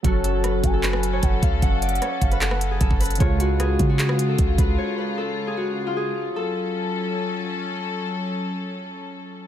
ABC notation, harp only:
X:1
M:4/4
L:1/16
Q:1/4=152
K:F#m
V:1 name="Harp"
F2 A2 B3 A B3 c3 ^e2 | f2 d2 c3 B A3 G A2 B2 | c2 F2 G3 F G3 A3 B2 | c2 B2 A3 G F3 ^E G2 z2 |
A12 z4 | z16 |]